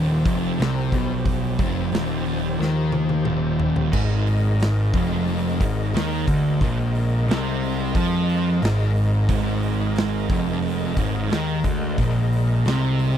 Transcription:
0.00 0.22 D#1 medium
0.00 0.25 D#2 loud
0.00 3.90 F3 medium
0.00 3.90 G4 medium
0.00 3.90 C5 medium
0.25 0.57 F1 loud
0.25 0.58 F2 loud
0.25 kick loud
0.25 open hi-hat medium
0.59 0.91 C2 medium
0.59 0.92 C3 loud
0.59 snare loud
0.59 open hi-hat medium
0.92 1.56 B1 loud
0.92 1.59 B2 loud
0.92 kick loud
0.92 open hi-hat medium
1.26 kick loud
1.26 open hi-hat medium
1.59 1.91 F1 loud
1.59 1.92 F2 loud
1.59 kick loud
1.59 open hi-hat medium
1.92 2.56 D#1 medium
1.92 2.59 D#2 medium
1.92 snare loud
1.92 open hi-hat medium
2.26 open hi-hat medium
2.59 3.23 D#2 loud
2.59 3.25 D#3 loud
2.59 snare medium
2.92 high tom medium
3.09 high tom medium
3.25 3.90 D#1 medium
3.25 3.92 D#2 loud
3.25 mid tom loud
3.60 floor tom loud
3.76 floor tom loud
3.92 4.90 G#1 loud
3.92 4.93 G#2 loud
3.92 13.18 G#3 medium
3.92 13.18 A#4 medium
3.92 13.18 D#5 medium
3.92 kick loud
3.92 crash loud
4.27 open hi-hat medium
4.60 snare loud
4.60 open hi-hat medium
4.94 5.57 F1 medium
4.94 5.60 F2 medium
4.94 kick loud
4.94 open hi-hat medium
5.27 open hi-hat medium
5.61 5.92 G#1 loud
5.61 5.94 G#2 loud
5.61 kick loud
5.61 open hi-hat medium
5.94 6.25 D#2 loud
5.94 6.27 D#3 loud
5.94 snare loud
5.94 open hi-hat loud
6.27 6.59 D2 medium
6.27 6.61 D3 loud
6.27 kick loud
6.27 open hi-hat medium
6.61 7.25 A#1 loud
6.61 7.28 A#2 loud
6.61 kick loud
6.61 open hi-hat medium
6.95 open hi-hat medium
7.28 7.91 C2 loud
7.28 7.95 C3 loud
7.28 snare loud
7.28 open hi-hat medium
7.63 open hi-hat medium
7.95 8.58 F2 loud
7.95 8.62 F3 loud
7.95 kick loud
7.95 open hi-hat medium
8.29 open hi-hat medium
8.62 9.26 G#1 loud
8.62 9.28 G#2 loud
8.62 snare loud
8.62 open hi-hat medium
8.96 open hi-hat medium
9.29 10.26 G#1 loud
9.29 10.30 G#2 loud
9.29 kick loud
9.29 open hi-hat loud
9.62 open hi-hat medium
9.96 snare loud
9.96 open hi-hat medium
10.29 10.93 F1 medium
10.29 10.97 F2 loud
10.29 kick loud
10.29 open hi-hat medium
10.62 open hi-hat loud
10.96 11.29 G#1 loud
10.96 11.30 G#2 loud
10.96 kick loud
10.96 open hi-hat medium
11.30 11.63 D#2 loud
11.30 11.64 D#3 loud
11.30 snare loud
11.30 open hi-hat medium
11.64 11.96 D2 loud
11.64 11.97 D3 loud
11.64 kick loud
11.64 open hi-hat medium
11.98 12.61 A#1 loud
11.98 12.65 A#2 loud
11.98 kick loud
11.98 open hi-hat medium
12.33 open hi-hat medium
12.65 13.18 C2 loud
12.65 13.18 C3 loud
12.65 snare loud
12.65 open hi-hat medium
12.99 open hi-hat medium

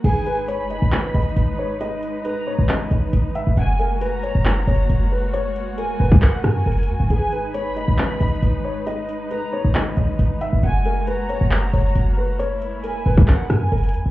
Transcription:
0.04 0.61 G#1 loud
0.04 3.54 G#3 medium
0.04 3.54 D#4 medium
0.04 0.25 G#4 loud
0.04 3.54 B4 medium
0.04 0.46 G#5 loud
0.04 closed hi-hat medium
0.04 crash loud
0.26 0.47 B4 medium
0.26 closed hi-hat medium
0.48 0.69 C#5 medium
0.48 1.77 B5 loud
0.48 closed hi-hat medium
0.60 0.81 F#1 loud
0.70 1.12 D#5 medium
0.70 closed hi-hat medium
0.82 1.13 G#1 loud
0.92 clap loud
0.92 closed hi-hat medium
1.14 1.36 G#1 loud
1.14 1.56 D#5 medium
1.14 closed hi-hat medium
1.22 closed hi-hat medium
1.29 closed hi-hat soft
1.37 2.55 G#1 loud
1.37 closed hi-hat medium
1.59 1.79 C#5 medium
1.81 2.22 D#5 loud
1.81 closed hi-hat medium
2.03 closed hi-hat medium
2.25 2.46 B4 medium
2.25 2.66 A#5 medium
2.25 closed hi-hat medium
2.47 2.68 C#5 medium
2.59 2.90 G#1 loud
2.69 2.89 D#5 medium
2.69 clap loud
2.69 closed hi-hat medium
2.91 3.12 G#1 loud
2.91 3.32 D#5 medium
2.91 closed hi-hat medium
3.13 3.45 G#1 loud
3.13 closed hi-hat medium
3.35 3.56 E5 medium
3.35 closed hi-hat medium
3.47 3.57 G#1 loud
3.57 4.32 F#1 loud
3.57 7.07 G#3 medium
3.57 7.07 A#3 medium
3.57 7.07 F#4 medium
3.57 3.78 F#5 loud
3.57 3.99 G#5 loud
3.57 closed hi-hat medium
3.79 4.00 A#4 medium
3.79 closed hi-hat medium
4.01 4.22 B4 medium
4.01 5.30 A#5 loud
4.01 closed hi-hat medium
4.23 4.65 C#5 medium
4.23 closed hi-hat medium
4.35 4.66 F#1 loud
4.45 clap loud
4.45 closed hi-hat medium
4.67 4.89 F#1 loud
4.67 5.09 C#5 medium
4.67 closed hi-hat medium
4.75 closed hi-hat medium
4.82 closed hi-hat soft
4.90 5.96 F#1 loud
4.90 closed hi-hat medium
5.12 5.32 B4 medium
5.33 5.75 C#5 loud
5.33 closed hi-hat medium
5.56 closed hi-hat medium
5.78 5.99 A#4 medium
5.78 6.19 G#5 loud
5.78 closed hi-hat medium
6.00 6.21 F#1 loud
6.00 6.21 B4 medium
6.12 kick loud
6.22 6.63 A#4 medium
6.22 6.43 F#5 medium
6.22 clap loud
6.22 closed hi-hat medium
6.44 6.65 F#2 loud
6.44 7.06 G#5 medium
6.44 cross-stick loud
6.44 closed hi-hat medium
6.66 6.90 F#1 loud
6.66 6.87 A#4 medium
6.66 closed hi-hat medium
6.72 closed hi-hat medium
6.78 closed hi-hat medium
6.83 closed hi-hat medium
6.88 6.99 F#2 loud
6.88 closed hi-hat medium
7.00 7.10 F#1 loud
7.10 7.67 G#1 loud
7.10 14.11 G#3 medium
7.10 10.60 D#4 medium
7.10 7.31 G#4 loud
7.10 10.60 B4 medium
7.10 7.52 G#5 loud
7.10 closed hi-hat medium
7.32 7.53 B4 medium
7.32 closed hi-hat medium
7.54 7.75 C#5 medium
7.54 8.83 B5 loud
7.54 closed hi-hat medium
7.66 7.87 F#1 loud
7.76 8.18 D#5 medium
7.76 closed hi-hat medium
7.88 8.19 G#1 loud
7.98 clap loud
7.98 closed hi-hat medium
8.20 8.42 G#1 loud
8.20 8.62 D#5 medium
8.20 closed hi-hat medium
8.28 closed hi-hat medium
8.35 closed hi-hat soft
8.42 9.60 G#1 loud
8.42 closed hi-hat medium
8.64 8.85 C#5 medium
8.87 9.28 D#5 loud
8.87 closed hi-hat medium
9.09 closed hi-hat medium
9.31 9.52 B4 medium
9.31 9.72 A#5 medium
9.31 closed hi-hat medium
9.53 9.74 C#5 medium
9.65 9.96 G#1 loud
9.75 9.95 D#5 medium
9.75 clap loud
9.75 closed hi-hat medium
9.97 10.18 G#1 loud
9.97 10.38 D#5 medium
9.97 closed hi-hat medium
10.19 10.51 G#1 loud
10.19 closed hi-hat medium
10.41 10.62 E5 medium
10.41 closed hi-hat medium
10.53 10.63 G#1 loud
10.63 11.38 F#1 loud
10.63 14.11 A#3 medium
10.63 12.38 F#4 medium
10.63 10.84 F#5 loud
10.63 11.05 G#5 loud
10.63 closed hi-hat medium
10.85 11.06 A#4 medium
10.85 closed hi-hat medium
11.07 11.28 B4 medium
11.07 12.36 A#5 loud
11.07 closed hi-hat medium
11.29 11.71 C#5 medium
11.29 closed hi-hat medium
11.41 11.72 F#1 loud
11.51 clap loud
11.51 closed hi-hat medium
11.73 11.95 F#1 loud
11.73 12.15 C#5 medium
11.73 closed hi-hat medium
11.81 closed hi-hat medium
11.88 closed hi-hat soft
11.95 13.02 F#1 loud
11.95 closed hi-hat medium
12.17 12.38 B4 medium
12.39 14.11 E4 medium
12.39 12.81 C#5 loud
12.39 closed hi-hat medium
12.62 closed hi-hat medium
12.83 13.04 A#4 medium
12.83 13.25 G#5 loud
12.83 closed hi-hat medium
13.06 13.27 F#1 loud
13.06 13.27 B4 medium
13.17 kick loud
13.28 13.69 A#4 loud
13.28 13.49 F#5 loud
13.28 clap loud
13.28 closed hi-hat medium
13.50 13.71 F#2 loud
13.50 14.11 G#5 medium
13.50 cross-stick loud
13.50 closed hi-hat medium
13.72 13.95 F#1 loud
13.72 13.93 A#4 medium
13.72 closed hi-hat medium
13.78 closed hi-hat medium
13.84 closed hi-hat medium
13.89 closed hi-hat medium
13.94 14.05 F#2 loud
13.94 closed hi-hat medium
14.06 14.11 F#1 loud

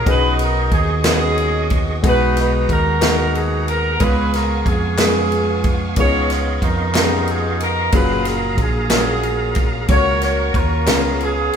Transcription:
0.00 3.96 G#4 medium
0.05 0.68 B1 medium
0.05 1.01 B2 medium
0.05 0.89 B3 medium
0.05 0.90 C#4 medium
0.05 0.90 D#4 medium
0.05 1.02 D#4 medium
0.05 0.90 F#4 medium
0.05 0.91 G#4 medium
0.05 0.39 B4 loud
0.05 2.01 D#5 medium
0.05 2.01 C#6 medium
0.05 kick loud
0.05 ride medium
0.10 0.72 G#4 medium
0.39 0.74 A#4 loud
0.39 ride medium
0.72 1.99 D#2 loud
0.72 1.04 G#4 loud
0.72 kick medium
0.72 ride soft
1.04 1.88 B3 medium
1.04 1.88 C#4 medium
1.04 1.88 D#4 medium
1.04 1.89 F#4 medium
1.04 1.12 A#4 medium
1.04 snare loud
1.04 clap medium
1.04 ride medium
1.08 2.01 C#4 medium
1.08 2.01 D#4 medium
1.08 1.77 G#4 loud
1.13 1.92 B4 medium
1.38 ride soft
1.70 kick medium
1.70 ride soft
2.02 2.65 B1 loud
2.02 2.98 B2 medium
2.02 2.86 G#3 medium
2.02 2.86 B3 medium
2.02 2.86 D#4 medium
2.02 2.87 F#4 medium
2.02 2.87 G#4 medium
2.02 3.98 F#5 medium
2.02 3.98 A#5 medium
2.02 kick loud
2.02 ride medium
2.07 2.70 D#4 medium
2.07 2.71 F#4 medium
2.07 2.36 B4 loud
2.37 2.68 B4 loud
2.37 snare soft
2.37 ride soft
2.69 3.97 D#2 medium
2.69 3.64 D#4 medium
2.69 3.65 F#4 medium
2.69 3.36 A#4 loud
2.69 kick medium
2.69 ride soft
3.00 3.84 B3 medium
3.00 3.85 D#4 medium
3.00 3.85 F#4 medium
3.00 3.85 G#4 medium
3.00 3.84 A#4 medium
3.00 snare loud
3.00 clap medium
3.00 ride medium
3.35 3.68 G#4 medium
3.35 ride soft
3.68 4.01 A#4 loud
3.68 ride soft
4.00 4.62 C#2 medium
4.00 4.95 C#3 medium
4.00 4.83 G#3 medium
4.00 4.83 B3 medium
4.00 7.90 B3 medium
4.00 4.83 C#4 medium
4.00 4.84 F4 medium
4.00 4.95 F4 medium
4.00 4.66 G#4 medium
4.00 4.84 G#4 medium
4.00 4.33 B4 loud
4.00 5.96 F5 medium
4.00 5.96 G#5 medium
4.00 7.90 C#6 medium
4.00 kick loud
4.00 ride medium
4.34 4.67 A#4 loud
4.34 snare soft
4.34 ride soft
4.66 5.93 F2 medium
4.66 4.98 G#4 medium
4.66 kick medium
4.66 ride soft
4.98 5.81 G#3 medium
4.98 5.81 B3 medium
4.98 5.82 B3 medium
4.98 5.82 C#4 medium
4.98 5.82 F4 medium
4.98 5.68 G#4 loud
4.98 5.82 G#4 medium
4.98 snare loud
4.98 clap medium
4.98 ride medium
5.32 ride soft
5.64 kick loud
5.64 ride soft
5.96 6.58 C#2 loud
5.96 6.92 C#3 medium
5.96 6.80 B3 medium
5.96 6.80 C#4 medium
5.96 6.80 D#4 medium
5.96 6.63 F4 medium
5.96 6.81 F4 medium
5.96 6.92 G#4 medium
5.96 6.81 G#4 medium
5.96 6.29 C#5 loud
5.96 7.91 D#5 medium
5.96 9.86 F5 medium
5.96 kick loud
5.96 ride medium
6.30 6.61 C#5 medium
6.30 snare soft
6.30 ride soft
6.62 7.89 F2 medium
6.62 7.57 D#4 medium
6.62 7.57 F4 medium
6.62 7.29 A#4 loud
6.62 kick medium
6.62 ride soft
6.95 7.78 B3 medium
6.95 7.78 C#4 medium
6.95 7.78 D#4 medium
6.95 7.79 F4 medium
6.95 7.02 G4 medium
6.95 snare loud
6.95 clap medium
6.95 ride medium
7.04 7.82 G#4 medium
7.28 7.61 G#4 medium
7.28 ride soft
7.60 7.94 A#4 medium
7.60 ride soft
7.92 8.59 F#1 loud
7.92 8.76 A#2 medium
7.92 8.76 F#3 medium
7.92 8.76 C#4 medium
7.92 8.76 F4 medium
7.92 8.88 F4 medium
7.92 9.87 G#4 medium
7.92 8.59 G#4 medium
7.92 8.77 G#4 medium
7.92 8.25 B4 loud
7.92 9.87 A#5 medium
7.92 kick loud
7.92 ride medium
8.25 8.59 A#4 medium
8.25 snare soft
8.25 ride soft
8.58 9.85 A#1 medium
8.58 8.91 G#4 medium
8.58 kick medium
8.58 ride soft
8.90 9.75 F#3 medium
8.90 9.74 A#3 medium
8.90 9.74 C#4 medium
8.90 9.86 C#4 medium
8.90 9.86 F4 medium
8.90 9.75 F4 medium
8.90 9.61 G#4 medium
8.90 9.75 A#4 medium
8.90 snare loud
8.90 clap medium
8.90 ride medium
9.23 ride soft
9.55 kick medium
9.55 ride soft
9.88 10.50 C#2 loud
9.88 10.83 C#3 medium
9.88 10.72 A#3 medium
9.88 10.72 C#4 medium
9.88 10.72 F#4 medium
9.88 10.84 F#4 medium
9.88 9.96 A4 medium
9.88 10.87 A#4 medium
9.88 10.55 A#4 medium
9.88 11.56 C#5 medium
9.88 10.73 C#5 medium
9.88 10.21 C#5 loud
9.88 10.86 C#6 medium
9.88 kick loud
9.88 ride medium
9.96 10.76 A#4 medium
10.22 10.53 C#5 loud
10.22 snare soft
10.22 ride soft
10.54 10.88 D#2 medium
10.54 11.21 F4 medium
10.54 11.21 A#4 loud
10.54 kick medium
10.54 ride soft
10.86 11.49 C#2 loud
10.86 11.56 C#3 medium
10.86 11.56 B3 medium
10.86 11.56 C#4 medium
10.86 11.56 F4 medium
10.86 11.56 G#4 medium
10.86 11.56 C#5 medium
10.86 11.56 F5 medium
10.86 snare loud
10.86 clap medium
10.86 ride medium
11.21 11.56 B3 medium
11.21 11.56 F4 medium
11.21 11.56 G#4 loud
11.21 ride soft

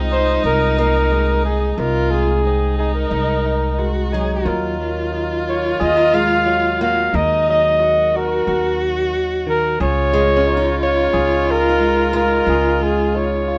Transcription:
0.00 0.40 C2 medium
0.00 1.74 C3 medium
0.00 1.11 G#3 medium
0.00 1.55 C4 medium
0.00 1.74 C4 medium
0.00 0.11 D#4 medium
0.00 1.75 D#4 soft
0.00 1.80 D#4 loud
0.00 1.95 F4 soft
0.00 1.77 G#4 medium
0.11 0.43 D#4 medium
0.11 0.42 C5 medium
0.44 1.74 C2 medium
0.44 0.78 D#4 medium
0.44 0.76 A#4 loud
0.78 2.90 A#3 medium
0.78 1.45 D#4 medium
0.78 1.41 A#4 medium
1.12 1.74 G#3 medium
1.45 1.79 D#4 medium
1.45 1.73 G#4 medium
1.73 1.80 G#4 medium
1.78 3.08 C2 medium
1.78 4.43 C3 medium
1.78 2.80 D#4 medium
1.78 2.44 F4 loud
1.78 2.12 A#4 medium
2.11 3.78 G#3 medium
2.11 2.78 G#4 medium
2.44 4.43 C4 medium
2.44 3.80 D#4 medium
2.78 3.12 D#4 medium
2.78 2.94 G#4 medium
2.95 3.92 A#4 medium
3.11 4.42 C2 medium
3.11 3.46 D#4 medium
3.46 4.13 D#4 medium
3.78 4.42 G#3 medium
3.78 4.14 F#4 medium
4.13 4.76 F#3 medium
4.13 4.47 D#4 medium
4.13 4.47 G#4 medium
4.45 5.76 D#2 medium
4.45 7.09 D#3 medium
4.45 4.80 F#3 medium
4.45 5.12 D#4 medium
4.45 7.14 F4 loud
4.45 5.80 A#4 medium
4.80 6.45 F#3 medium
5.12 7.81 D#4 medium
5.49 5.83 C#5 medium
5.80 7.10 D#2 medium
5.80 5.97 G#4 medium
5.80 6.16 D#5 medium
5.97 7.14 A#4 medium
6.14 8.25 G#3 medium
6.14 6.81 F5 loud
6.46 7.47 F#3 medium
6.81 8.92 A#3 medium
6.81 7.10 F#4 medium
6.81 7.17 F5 loud
7.13 8.43 D#2 medium
7.13 9.14 D#3 medium
7.13 7.81 D#4 loud
7.13 9.77 A#4 medium
7.13 7.48 D#5 medium
7.49 9.81 F#3 medium
7.49 8.18 D#5 medium
7.80 9.83 D#4 medium
7.80 9.79 F#4 loud
8.16 8.47 F#4 medium
8.16 8.82 A#4 medium
8.47 9.76 D#2 medium
8.47 8.81 F#4 medium
9.47 9.80 D#3 medium
9.47 9.79 A#4 medium
9.80 11.09 C#2 medium
9.80 12.46 C#3 medium
9.80 13.58 F4 loud
9.80 11.13 G#4 medium
9.80 10.77 C#5 loud
10.13 11.80 G#3 medium
10.13 12.12 G#3 medium
10.36 12.44 C#4 soft
10.47 12.43 D#4 medium
10.57 11.68 D#4 soft
10.81 11.47 F4 medium
10.81 11.53 C#5 loud
11.14 12.43 C#2 medium
11.14 12.49 G#4 medium
11.47 12.15 F4 medium
11.47 12.15 A#4 medium
11.69 13.58 D#4 soft
11.80 12.81 G#3 medium
12.13 13.58 G#3 medium
12.13 13.18 F4 medium
12.13 12.85 A#4 medium
12.47 13.58 C#2 medium
12.47 13.58 C#3 medium
12.47 13.58 G#4 medium
12.81 13.58 G#3 medium
12.81 13.18 G#4 medium
13.15 13.58 D#4 medium
13.15 13.58 C#5 medium
13.48 13.58 F4 medium

